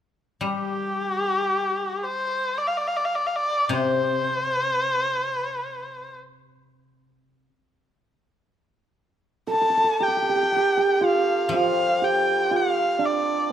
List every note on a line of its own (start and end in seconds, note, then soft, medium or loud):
0.41 4.16 G3 soft
0.47 2.05 G4 medium
2.03 2.60 C5 medium
2.58 2.69 D5 medium
2.68 2.79 F5 medium
2.77 2.89 D5 medium
2.87 2.98 F5 medium
2.96 3.06 D5 medium
3.05 3.17 F5 medium
3.15 3.28 D5 medium
3.27 3.37 F5 medium
3.36 3.74 D5 medium
3.69 7.45 C3 medium
3.69 6.15 C5 medium
9.47 9.53 A4 medium
9.47 10.04 A5 medium
9.53 9.61 A4 soft
9.61 9.70 A4 medium
9.70 9.77 A4 soft
9.77 9.84 A4 medium
9.84 12.76 A4 soft
10.00 10.08 G4 medium
10.00 10.95 G5 medium
10.08 10.16 G4 soft
10.17 10.22 G4 soft
10.22 10.29 G4 soft
10.29 10.35 G4 soft
10.36 10.42 G4 soft
10.52 10.56 G4 soft
10.56 10.77 G4 medium
10.77 12.02 G4 medium
10.95 11.06 G5 medium
11.01 11.54 F4 medium
11.01 11.54 F5 medium
11.49 13.52 F3 soft
11.54 12.51 F4 medium
11.54 12.05 F5 medium
12.02 13.52 G4 medium
12.02 12.58 G5 medium
12.51 13.52 F4 medium
12.56 13.07 F5 medium
12.99 13.52 D4 medium
13.05 13.52 D5 medium